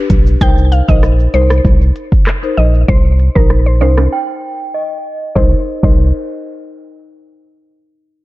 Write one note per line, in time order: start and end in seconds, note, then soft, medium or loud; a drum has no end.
0.00 0.15 D4 medium
0.00 0.15 G4 medium
0.00 0.15 B4 medium
0.10 0.37 B1 medium
0.10 kick medium
0.10 closed hi-hat medium
0.10 shaker medium
0.27 shaker medium
0.41 0.82 C2 loud
0.41 0.85 D#4 medium
0.41 0.85 A#4 medium
0.41 0.85 C5 loud
0.41 0.55 G5 loud
0.41 kick loud
0.41 shaker medium
0.58 shaker medium
0.58 shaker soft
0.72 0.86 F5 medium
0.72 closed hi-hat medium
0.72 shaker medium
0.88 1.28 A#1 medium
0.88 1.07 D#4 medium
0.88 1.07 A#4 medium
0.88 1.08 C5 medium
0.88 1.01 D#5 medium
0.88 kick medium
0.88 shaker medium
1.03 cross-stick medium
1.03 shaker medium
1.20 shaker soft
1.20 shaker medium
1.34 1.61 C2 medium
1.34 1.54 D#4 medium
1.34 1.54 A#4 medium
1.34 1.48 C5 medium
1.34 1.55 C5 medium
1.34 closed hi-hat medium
1.34 shaker medium
1.50 cross-stick loud
1.50 shaker medium
1.65 1.91 C2 loud
1.65 kick medium
1.65 shaker medium
1.81 shaker medium
1.96 closed hi-hat medium
1.96 shaker medium
2.12 kick medium
2.12 shaker medium
2.27 cross-stick medium
2.27 clap medium
2.27 shaker medium
2.43 2.62 D#4 medium
2.43 2.62 A#4 medium
2.43 2.62 C5 medium
2.43 shaker soft
2.43 shaker medium
2.57 2.84 A#1 medium
2.57 2.71 D#5 medium
2.57 closed hi-hat medium
2.57 shaker medium
2.74 shaker medium
2.88 3.29 C2 loud
2.88 3.14 C5 loud
2.88 kick loud
2.88 shaker medium
3.05 shaker soft
3.05 shaker medium
3.19 closed hi-hat medium
3.19 shaker medium
3.35 3.83 A#1 medium
3.35 3.55 D#4 medium
3.35 3.48 A#4 medium
3.35 3.55 A#4 medium
3.35 3.55 C5 medium
3.35 kick medium
3.35 shaker medium
3.50 cross-stick medium
3.50 shaker medium
3.66 3.79 C5 medium
3.66 shaker medium
3.66 shaker soft
3.81 4.08 C2 loud
3.81 4.02 D#4 medium
3.81 4.02 A#4 medium
3.81 3.95 C5 medium
3.81 4.02 C5 medium
3.81 closed hi-hat medium
3.81 high timbale medium
3.81 shaker medium
3.98 cross-stick loud
3.98 high timbale medium
3.98 shaker medium
4.12 4.76 G5 loud
4.74 5.32 D#5 medium
5.35 5.54 C2 loud
5.35 5.54 D#4 medium
5.35 5.54 A#4 medium
5.35 5.54 C5 medium
5.35 5.54 D#5 medium
5.35 kick loud
5.35 snare medium
5.35 shaker medium
5.83 6.12 C2 loud
5.83 6.06 D#4 medium
5.83 6.06 A#4 medium
5.83 6.12 C5 medium
5.83 6.06 C5 loud
5.83 6.12 D#5 medium
5.83 kick loud
5.83 crash medium
5.83 shaker medium